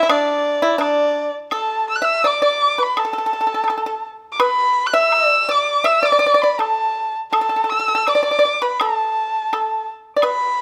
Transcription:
Already playing: E5
0.03 E4
0.09 D4 D5, high woodblock
0.62 E4
0.78 D4 D5, high woodblock, low woodblock
1.51 A4 A5, high woodblock
1.89 E6
1.95 F#6
2.02 E5 E6
2.24 D5 D6, high woodblock, low woodblock
2.42 D5 D6
2.78 B4 B5
2.97 A4 A5, high woodblock
3.05 A4
3.13 A4
3.18 A4
3.26 A4
3.33 A4
3.41 A4
3.47 A4
3.54 A4
3.64 A4
3.68 A4, high woodblock, low woodblock
3.78 A4
3.86 A4
4.32 D6
4.39 B4 B5, high woodblock
4.86 F#6
4.93 E5 E6
5.12 high woodblock, low woodblock
5.27 D5
5.49 D5 D6
5.84 E5 E6, high woodblock
6.03 D5 D6
6.12 D5
6.19 D5
6.26 D5
6.34 D5
6.42 D5 B5
6.59 A4 A5, high woodblock, low woodblock
7.32 A4 A5, high woodblock
7.41 A4
7.49 A4
7.56 A4
7.64 A4
7.70 A4 E6
7.79 A4
7.88 A4
7.95 A4
8.07 D5 D6, high woodblock, low woodblock
8.15 D5
8.23 D5 D6
8.31 D5
8.39 D5
8.45 D5
8.62 B4 B5
8.80 A4 A5, high woodblock
9.53 A4, high woodblock, low woodblock
10.16 D5
10.22 B4 B5, high woodblock

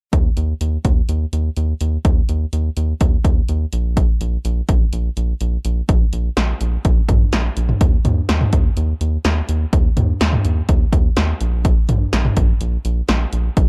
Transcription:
0.13 D#2, kick, closed hi-hat
0.37 D#2, closed hi-hat
0.61 D#2, closed hi-hat
0.85 D#2, kick, closed hi-hat
1.09 D#2, closed hi-hat
1.33 D#2, closed hi-hat
1.57 D#2, closed hi-hat
1.81 D#2, closed hi-hat
2.05 D#2, kick, closed hi-hat
2.29 D#2, closed hi-hat
2.53 D#2, closed hi-hat
2.77 D#2, closed hi-hat
3.01 D#2, kick, closed hi-hat
3.25 D#2, kick, closed hi-hat
3.49 D#2, closed hi-hat
3.73 A#1, closed hi-hat
3.97 kick, closed hi-hat
4.21 A#1, closed hi-hat
4.45 A#1, closed hi-hat
4.69 A#1, kick, closed hi-hat
4.93 A#1, closed hi-hat
5.17 A#1, closed hi-hat
5.41 A#1, closed hi-hat
5.65 A#1, closed hi-hat
5.89 A#1, kick, closed hi-hat
6.13 A#1, closed hi-hat
6.37 A#1, snare, closed hi-hat
6.61 A#1, closed hi-hat
6.85 A#1, kick, closed hi-hat
7.09 A#1, kick, closed hi-hat, mid tom
7.33 A#1, snare, closed hi-hat
7.57 A#1, closed hi-hat
7.69 mid tom
7.81 D#2, kick, closed hi-hat
8.05 D#2, closed hi-hat, mid tom
8.29 D#2, snare, closed hi-hat
8.41 mid tom
8.53 D#2, kick, closed hi-hat
8.77 D#2, closed hi-hat
9.01 D#2, closed hi-hat
9.25 D#2, snare, closed hi-hat
9.49 D#2, closed hi-hat
9.73 D#2, kick, closed hi-hat
9.97 D#2, closed hi-hat, mid tom
10.21 D#2, snare, closed hi-hat
10.33 mid tom
10.45 D#2, closed hi-hat
10.69 D#2, kick, closed hi-hat
10.93 D#2, kick, closed hi-hat
11.17 D#2, snare, closed hi-hat
11.41 A#1, closed hi-hat
11.65 kick, closed hi-hat
11.89 A#1, closed hi-hat, mid tom
12.13 A#1, snare, closed hi-hat
12.25 mid tom
12.37 A#1, kick, closed hi-hat
12.61 A#1, closed hi-hat
12.85 A#1, closed hi-hat
13.09 A#1, snare, closed hi-hat
13.33 A#1, closed hi-hat
13.57 A#1, kick, closed hi-hat

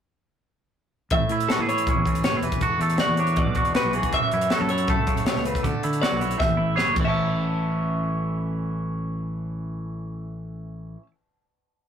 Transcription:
1.10 A1 A2 E5, kick, closed hi-hat
1.29 A2 E4, closed hi-hat
1.40 closed hi-hat
1.49 E3 F#4 A4, snare, closed hi-hat
1.59 A2 G#4
1.69 E4 C#5, closed hi-hat
1.78 closed hi-hat
1.87 C#4, kick, closed hi-hat
1.96 E2
2.06 A1 A2, kick, closed hi-hat
2.15 closed hi-hat
2.24 C#4 C#5, snare, closed hi-hat
2.32 F#1 E4
2.42 E1 E3 B4, closed hi-hat
2.52 kick, closed hi-hat
2.61 F#4 A4, kick, closed hi-hat
2.79 E2 A3 A4, closed hi-hat
2.90 closed hi-hat
2.98 F#4 D5, snare, closed hi-hat
3.08 E2
3.17 D4 C#5, closed hi-hat
3.27 closed hi-hat
3.36 B2 D5, kick, closed hi-hat
3.46 B1
3.55 E1 F#4, kick, closed hi-hat
3.65 closed hi-hat
3.75 F#4 B4, snare, closed hi-hat
3.85 B1
3.93 E3 G#4, closed hi-hat
4.03 kick, closed hi-hat
4.12 F#1 F#2 E5, kick, closed hi-hat
4.31 F#2 E4, closed hi-hat
4.41 closed hi-hat
4.50 F#3 F#4 A4, snare, closed hi-hat
4.61 F#2 A4
4.69 E4 C#5, closed hi-hat
4.78 closed hi-hat
4.88 A3 A4, kick, closed hi-hat
4.98 C#2
5.07 F#1 C#3, kick, closed hi-hat
5.17 closed hi-hat
5.26 B2 C#5, snare, closed hi-hat
5.36 C#2, snare
5.45 C#3 B4, closed hi-hat
5.55 kick, closed hi-hat
5.63 D2 D3 A4, kick, closed hi-hat
5.83 D3 E4, closed hi-hat
5.93 closed hi-hat
6.02 F#3 F#4 D5, snare, closed hi-hat
6.12 B1
6.20 E4 C#5, closed hi-hat
6.31 closed hi-hat
6.38 A1 A2 E5, kick, snare
6.49 E2
6.57 A1 E4
6.76 F#1 E3 G#4 C#5, snare
6.94 A1 A2, kick, crash
7.00 E3 C#5
7.05 C#4 E5
7.09 E4 A5

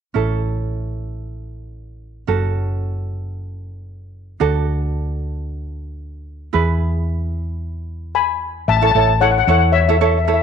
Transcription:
0.14 A1 C#4 E4 A4
2.27 F#1 C#4 F#4 A4
4.40 D2 D4 F#4 A4
6.53 E2 E4 G#4 B4
8.15 G#5 B5
8.68 A1 E5 A5
8.77 A5
8.81 E4 A4 C#5 A5
8.91 A1 E4 A4 A5
8.96 C#5 A5
9.07 A5
9.21 E4 A4 C#5 F#5
9.31 F#5
9.38 F#5
9.44 E2 F#5
9.48 E4 A4 C#5 F#5
9.58 F#5
9.72 C#5 E5
9.81 E5
9.88 E4 A4 C#5 E5
9.96 E5
10.01 E4 A4 C#5 E5
10.11 E5
10.18 E5
10.25 E4 A4 C#5 E5
10.34 E5

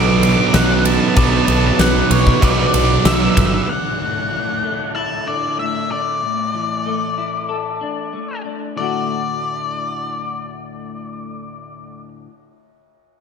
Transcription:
Already playing: B1 B2 F#3 B3 D4 A4 D6
0.08 D6
0.17 D6
0.23 D6, ride
0.33 D6
0.40 D6
0.48 D6
0.54 B1 F#5 F#6, snare, ride
0.85 A5, ride
0.94 A5
1.01 A5
1.09 A5
1.15 B1 B2 F#3 B3 B4 A5 D6, kick, ride
1.23 A5
1.30 A5
1.37 A5
1.45 B1 A5, ride
1.52 A5
1.60 A5
1.67 A5
1.75 B1 A5
1.79 F#5 D6, snare, ride
2.10 B1 C#5 F#6, ride
2.27 kick
2.41 B1 B2 F#3 B3 D5, kick, ride
2.51 D5
2.59 D5
2.66 D5
2.74 B1 D5, ride
3.05 B1 E5 D6, snare, ride
3.15 E5
3.22 E5
3.31 E5
3.37 G1 E5 F#6, kick, ride
3.46 E5
3.54 E5
3.64 E5
3.69 D2 F#5
4.00 A2
4.32 A2
4.63 A3
4.95 E4 A5
5.27 D3 D5
5.58 A2 E5
5.90 D3 D5
6.22 A2
6.54 E3
6.86 A3
7.18 E4
7.49 A4
7.81 D4
8.13 A3
8.45 D4
8.76 D2 A2 D3 A3 D5
8.80 F#4

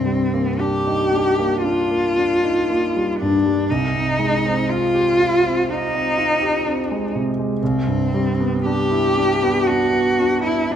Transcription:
Already playing: C2 G2 C4
0.05 G3
0.34 A#3
0.60 D4 G4
0.87 D#4
1.14 D4
1.39 A#3
1.64 D4 F4
1.91 A#3
2.18 D4
2.44 D#4
2.69 A#3
2.96 G3
3.20 G2 D4
3.46 G3
3.70 C2 D#4
3.95 C3
4.19 G#3
4.46 C4
4.69 F4
4.94 G4
5.19 F4
5.44 C4
5.69 D#4 F4
5.95 C4
6.17 F4
6.42 G4
6.66 C4
6.91 G#3
7.15 C3
7.39 G#3
7.63 C2 C4
7.87 G2
8.14 G3
8.40 B3
8.66 D4 G4
8.91 E4
9.18 D4
9.43 B3
9.66 D4 F#4
9.93 B3
10.20 D4
10.44 E4
10.71 B3 D4

